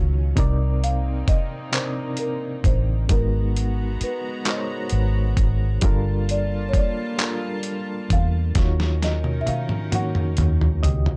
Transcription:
Already playing: C#2 D#3 F#3 C#4 D#4 F4 F#4 C#5 F5
0.36 C2 C3 A#3 C4 D#4 A#4 D5, kick, closed hi-hat
0.84 F5, closed hi-hat
1.28 D#5, muted fingered electric bass stroke, kick, closed hi-hat
1.72 C3 C4 D4 A#4 C5 D5, clap, closed hi-hat
1.80 D#4
2.17 A#4, closed hi-hat
2.64 A1 C5, kick, closed hi-hat
3.09 G#1 G#3 B3 D#4 F#4 A#4 A#5, kick, closed hi-hat
3.13 B3
3.56 closed hi-hat
4.01 B4, muted fingered electric bass stroke, closed hi-hat
4.45 G#3 D#4 F#4 A#4 C5, clap, closed hi-hat
4.50 D#5
4.55 C#5
4.89 G#1, closed hi-hat
5.37 G#1, kick, closed hi-hat
5.81 G1 G3 A#3 D4 F4 A4 A5, kick, closed hi-hat
5.86 A#4
6.29 D5, closed hi-hat
6.69 C#5
6.73 D5, muted fingered electric bass stroke, kick, closed hi-hat
7.18 G3 D4 F4 A4, clap, closed hi-hat
7.22 A#4
7.63 closed hi-hat
8.10 E2 F5, kick, closed hi-hat
8.55 D#2 D#3 C#4 D#4 F4 F#4 A#4 C#5, kick, snare, closed hi-hat
8.80 snare
9.02 D#5, snare, closed hi-hat
9.24 high tom
9.41 E5
9.47 F5, muted fingered electric bass stroke, closed hi-hat, high tom
9.69 mid tom
9.91 D#3 A#3 C#4 D#4 F#4 F#5, closed hi-hat, mid tom
9.95 C#5
10.15 mid tom
10.37 D#2, closed hi-hat, mid tom
10.61 floor tom
10.83 C#2 G4 D#5, closed hi-hat, floor tom
11.06 floor tom

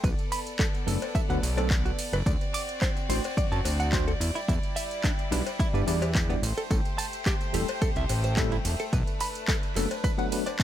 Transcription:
0.04 B1 B3 A4 B4 D5, kick, closed hi-hat, tambourine
0.19 closed hi-hat, tambourine
0.32 B5, open hi-hat, ride, tambourine
0.47 closed hi-hat, tambourine
0.59 A4, kick, clap, closed hi-hat, tambourine
0.75 closed hi-hat, tambourine
0.86 F#1 F#3 A3 B3 D4 A4, open hi-hat, ride, tambourine
1.02 closed hi-hat, tambourine, cowbell
1.15 E5, kick, closed hi-hat, tambourine
1.29 D2 F#3 A3 B3 D4 B4 F#5, closed hi-hat, tambourine
1.43 B1, open hi-hat, ride, tambourine
1.57 F#3 A3 B3 D4 A4 D5, closed hi-hat, tambourine, cowbell
1.70 kick, clap, closed hi-hat, tambourine
1.85 F#4, closed hi-hat, tambourine
1.99 open hi-hat, ride, tambourine
2.13 F#1 B4, closed hi-hat, tambourine
2.26 D2 C4 F#4 D5, kick, closed hi-hat, tambourine
2.41 closed hi-hat, tambourine
2.54 D6, open hi-hat, ride, tambourine
2.69 closed hi-hat, tambourine
2.82 C5, kick, clap, closed hi-hat, tambourine
2.97 closed hi-hat, tambourine
3.09 A1 A3 C4 D4 F#4 C5, open hi-hat, ride, tambourine
3.24 closed hi-hat, tambourine, cowbell
3.37 F#2 D5, kick, closed hi-hat, tambourine
3.52 F#2 A5, closed hi-hat, tambourine
3.65 D2, open hi-hat, ride, tambourine, cowbell
3.80 F#5, closed hi-hat, tambourine
3.92 A3 C4 D4 F#4 C5, kick, clap, closed hi-hat, tambourine
4.08 A4, closed hi-hat, tambourine
4.20 E2 G3 E4, open hi-hat, ride, tambourine
4.35 E4, closed hi-hat, tambourine
4.48 E2 E4, kick, closed hi-hat, tambourine
4.63 closed hi-hat, tambourine
4.76 E5, open hi-hat, ride, tambourine
4.91 closed hi-hat, tambourine
5.04 D4, kick, clap, closed hi-hat, tambourine
5.19 closed hi-hat, tambourine
5.31 B1 G3 B3 D4 E4 B4, open hi-hat, ride, tambourine
5.47 closed hi-hat, tambourine, cowbell
5.59 E4, kick, closed hi-hat, tambourine
5.73 G2 G3 B3 D4 E4 B4 D5, closed hi-hat, tambourine
5.87 E2 G3 B3 D4 E4 D5, open hi-hat, ride, tambourine
6.02 G4, closed hi-hat, tambourine, cowbell
6.15 kick, clap, closed hi-hat, tambourine
6.29 G3 B3 D4 E4 D5, closed hi-hat, tambourine
6.42 A1 A3 G4 C5, open hi-hat, ride, tambourine
6.58 A4, closed hi-hat, tambourine
6.71 A1 A4, kick, closed hi-hat, tambourine
6.85 closed hi-hat, tambourine
6.98 A5, open hi-hat, ride, tambourine
7.13 closed hi-hat, tambourine
7.26 G4, kick, clap, closed hi-hat, tambourine
7.41 closed hi-hat, tambourine
7.53 E1 G3 A3 C4 E4 G4 A4, open hi-hat, ride, tambourine
7.68 closed hi-hat, tambourine, cowbell
7.82 C2 A4, kick, closed hi-hat, tambourine
7.96 C2 E5, closed hi-hat, tambourine
8.09 A1, open hi-hat, ride, tambourine, cowbell
8.24 C5, closed hi-hat, tambourine
8.37 G3 A3 C4 E4 A4, kick, clap, closed hi-hat, tambourine
8.52 E4, closed hi-hat, tambourine
8.65 E1, open hi-hat, ride, tambourine
8.80 A4, closed hi-hat, tambourine
8.93 B1 D4 B4, kick, closed hi-hat, tambourine
9.07 closed hi-hat, tambourine
9.20 B5, open hi-hat, ride, tambourine
9.35 closed hi-hat, tambourine
9.48 A4, kick, clap, closed hi-hat, tambourine
9.63 closed hi-hat, tambourine
9.76 F#1 F#3 A3 B3 D4 A4, clap, open hi-hat, ride, tambourine
9.91 closed hi-hat, tambourine, cowbell
10.04 B4, kick, closed hi-hat, tambourine
10.18 F#3 A3 B3 D4 B4 F#5, closed hi-hat, tambourine
10.32 F#3 A3 B3 D4 B4, open hi-hat, ride, tambourine
10.46 D5, closed hi-hat, tambourine, cowbell
10.59 kick, clap, closed hi-hat, high tom, tambourine

